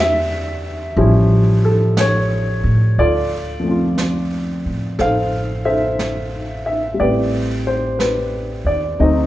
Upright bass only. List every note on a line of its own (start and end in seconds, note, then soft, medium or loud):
0.00 0.93 E2 medium
0.97 2.59 A1 medium
2.64 2.96 A2 medium
2.98 4.60 D2 medium
4.66 4.97 A2 medium
4.99 6.95 A1 medium
7.00 8.62 A1 medium
8.65 8.97 D#2 medium
9.00 9.27 D2 medium